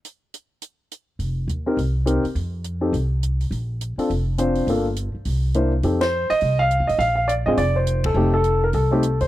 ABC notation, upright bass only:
X:1
M:4/4
L:1/8
Q:"Swing" 1/4=207
K:Fmix
V:1 name="Upright bass" clef=bass
z8 | F,,,2 E,,2 C,,3 z | F,,4 C,,4 | B,,,3 z F,,,4 |
G,,,3 z C,,4 | F,,3 z C,,2- (3C,, E,, A,,, | B,,,3 _A,,, F,,,4 | F,,,4 C,,3 =E,, |]